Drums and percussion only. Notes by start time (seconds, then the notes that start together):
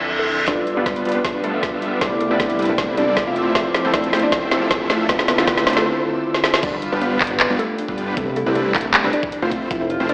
0.48 kick, snare, closed hi-hat
0.67 closed hi-hat
0.86 kick, snare, closed hi-hat
0.96 closed hi-hat
1.05 closed hi-hat
1.09 closed hi-hat
1.12 closed hi-hat
1.25 kick, snare, closed hi-hat
1.44 closed hi-hat
1.63 kick, snare, closed hi-hat
1.82 closed hi-hat
2.01 kick, snare, closed hi-hat
2.21 closed hi-hat
2.40 kick, snare, closed hi-hat
2.50 closed hi-hat
2.59 closed hi-hat
2.62 closed hi-hat
2.65 closed hi-hat
2.78 kick, snare, closed hi-hat
2.97 closed hi-hat
3.17 kick, snare, closed hi-hat
3.36 closed hi-hat
3.55 kick, snare, closed hi-hat
3.74 snare, closed hi-hat
3.94 kick, snare, closed hi-hat
4.04 closed hi-hat
4.13 snare, closed hi-hat
4.16 closed hi-hat
4.19 closed hi-hat
4.32 kick, snare, closed hi-hat
4.51 snare, closed hi-hat
4.71 kick, snare, closed hi-hat
4.90 snare, closed hi-hat
5.09 kick, snare, closed hi-hat
5.19 snare
5.28 snare, closed hi-hat
5.38 snare
5.48 kick, snare, closed hi-hat
5.58 snare, closed hi-hat
5.67 snare, closed hi-hat
5.70 closed hi-hat
5.73 snare, closed hi-hat
6.34 snare
6.44 snare
6.54 snare
6.63 kick, closed hi-hat, crash
6.82 closed hi-hat
7.01 closed hi-hat
7.21 kick, clap, closed hi-hat
7.24 closed hi-hat
7.27 closed hi-hat
7.40 clap, closed hi-hat
7.59 closed hi-hat
7.78 closed hi-hat
7.88 kick
7.98 closed hi-hat
8.17 kick, closed hi-hat
8.36 closed hi-hat
8.55 closed hi-hat
8.75 kick, clap, closed hi-hat
8.78 closed hi-hat
8.81 closed hi-hat
8.94 clap, closed hi-hat
9.13 closed hi-hat
9.23 kick
9.32 closed hi-hat
9.52 kick, closed hi-hat
9.71 kick, closed hi-hat
9.90 closed hi-hat
10.09 closed hi-hat